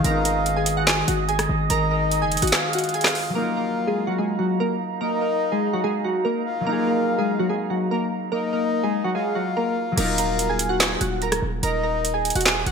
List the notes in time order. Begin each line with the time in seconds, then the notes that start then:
0.00 D#3 G#3
0.04 G#1 B3 G#4 A#4 D#5 F5 G#5 A#5 D#6, closed hi-hat
0.10 D#4
0.25 A#4 A#5, closed hi-hat
0.46 closed hi-hat
0.56 G#4 G#5
0.66 closed hi-hat
0.77 F#4 F#5
0.87 G#4 G#5, snare, clap, closed hi-hat
1.08 G#1 F#4 F#5, closed hi-hat
1.29 G#4 G#5, closed hi-hat
1.39 cross-stick, closed hi-hat
1.49 G#1
1.70 G#1 A#4 D#5 A#5, closed hi-hat
1.91 A#4 A#5
2.12 closed hi-hat
2.22 F#1 G#4 G#5
2.32 closed hi-hat, open hi-hat
2.37 closed hi-hat
2.42 G#1 F#4 F#5, closed hi-hat
2.47 closed hi-hat
2.52 G#4 F5 G#5, cross-stick, snare, clap, closed hi-hat
2.73 F#4 F#5, closed hi-hat
2.79 closed hi-hat
2.84 closed hi-hat
2.89 closed hi-hat
2.94 G#4 G#5, closed hi-hat
3.01 cross-stick, snare, closed hi-hat
3.05 clap, closed hi-hat
3.15 open hi-hat
3.30 F#3 A#3
3.35 A#3 D#4 A#4 D#5 F5 A#5
3.41 F4
3.57 A#3 A#4
3.87 G#3 G#4
4.07 F#3 F#4
4.18 G#3 G#4
4.39 F#3 F#4
4.60 A#3 A#4
5.01 A#3 A#4 D#5
5.21 A#3 A#4
5.52 G#3 G#4
5.73 F#3 F#4
5.84 G#3 G#4
6.04 F#3 F#4
6.25 A#3 A#4
6.46 F5
6.61 F#3 A#3
6.67 A#3 D#4 A#4 F5
6.72 G#4
6.87 A#3 A#4
7.18 G#3 G#4
7.39 F#3 F#4
7.49 G#3 G#4
7.70 F#3 F#4
7.91 A#3 A#4
8.32 A#3 A#4 D#5
8.53 A#3 A#4
8.84 G#3 G#4
9.04 F#3 F#4
9.15 G#3 G#4 F5
9.35 F#3 F#4
9.57 A#3 A#4
9.92 F#3 A#3
9.97 D#1 D#4 A#4 F5 A#5, closed hi-hat, crash
10.03 F4
10.18 A#4 A#5, closed hi-hat
10.39 closed hi-hat
10.50 G#4 G#5
10.59 closed hi-hat
10.69 F#4 F#5
10.80 G#4 G#5, snare, clap, closed hi-hat
11.01 D#1 F#4 F#5, closed hi-hat
11.22 A#4 A#5, closed hi-hat
11.32 cross-stick, closed hi-hat
11.42 D#1
11.63 D#1 A#4 D#5 A#5, closed hi-hat
11.83 A#4 A#5
12.05 closed hi-hat
12.14 G#4 G#5
12.25 closed hi-hat
12.30 closed hi-hat
12.35 D#1 F#4 F#5, closed hi-hat
12.41 closed hi-hat
12.46 G#4 G#5, snare, clap, closed hi-hat
12.66 D#1 F#4 F#5, closed hi-hat